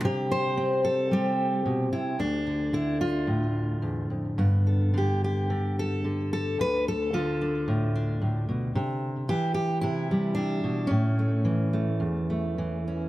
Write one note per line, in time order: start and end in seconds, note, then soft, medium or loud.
0.00 1.91 C3 medium
0.00 0.57 D3 medium
0.00 1.10 G3 soft
0.05 0.85 G4 loud
0.32 0.84 C5 loud
0.57 2.15 C4 medium
0.85 1.65 A4 loud
1.11 1.65 G3 medium
1.11 1.92 G4 loud
1.66 1.92 B2 medium
1.93 2.19 C3 medium
1.93 2.19 E4 medium
2.19 3.82 D2 medium
2.19 3.28 D4 medium
2.47 2.72 D3 soft
2.73 4.93 D3 medium
2.73 3.00 E4 medium
3.01 4.11 F4 medium
3.27 4.39 A2 medium
3.82 4.10 E2 medium
4.10 4.38 F2 medium
4.38 6.56 G2 medium
4.38 6.56 B3 medium
4.67 4.97 A4 soft
4.94 5.49 D3 medium
4.94 5.23 G4 medium
5.24 5.78 G4 medium
5.50 6.03 D3 medium
5.79 6.32 A4 medium
6.04 7.12 D3 medium
6.33 6.60 A4 loud
6.59 8.75 D2 medium
6.59 6.87 B4 loud
6.88 7.68 A4 loud
7.13 9.29 D3 medium
7.13 8.75 F4 medium
7.41 7.94 D4 soft
7.68 8.20 A2 medium
7.96 8.73 D4 soft
8.22 8.48 A2 medium
8.49 8.75 B2 medium
8.75 9.29 C3 medium
9.29 10.87 E3 medium
9.29 9.53 G4 loud
9.54 9.81 G4 loud
9.81 10.36 C3 medium
9.81 10.34 E4 medium
10.11 10.91 G3 medium
10.35 10.63 C3 medium
10.35 10.89 D4 medium
10.64 10.90 B2 medium
10.87 12.00 A2 medium
10.87 12.86 C#4 medium
11.19 11.72 A3 soft
11.45 12.57 E3 medium
11.73 12.29 A3 soft
12.00 13.09 E2 medium
12.30 13.09 A3 soft
12.58 13.09 E3 medium
12.88 13.09 C#4 soft